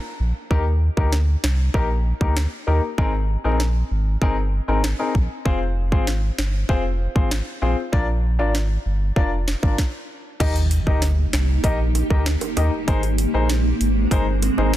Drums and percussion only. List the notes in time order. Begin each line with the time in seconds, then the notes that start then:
0.51 kick
0.97 kick
1.12 snare
1.44 finger snap, snare
1.74 kick
2.21 kick
2.37 finger snap, snare
2.98 kick
3.60 snare
4.22 kick
4.84 finger snap, snare
5.15 kick
5.46 kick
5.92 kick
6.07 snare
6.39 finger snap, snare
6.69 kick
7.16 kick
7.31 finger snap, snare
7.93 kick
8.55 snare
9.16 kick
9.48 snare
9.63 kick
9.78 kick, snare
10.40 kick, closed hi-hat, crash
10.56 closed hi-hat
10.71 closed hi-hat
10.87 kick
11.02 snare, closed hi-hat
11.33 finger snap, snare, closed hi-hat
11.64 kick, closed hi-hat
11.95 closed hi-hat, high bongo
12.10 kick, high bongo
12.26 finger snap, snare, closed hi-hat
12.41 closed hi-hat, high bongo
12.57 closed hi-hat, high bongo, low bongo
12.88 kick, closed hi-hat
13.03 closed hi-hat
13.18 closed hi-hat
13.49 snare, closed hi-hat
13.81 closed hi-hat
14.11 kick, closed hi-hat
14.42 closed hi-hat, high bongo
14.58 high bongo
14.74 snare, closed hi-hat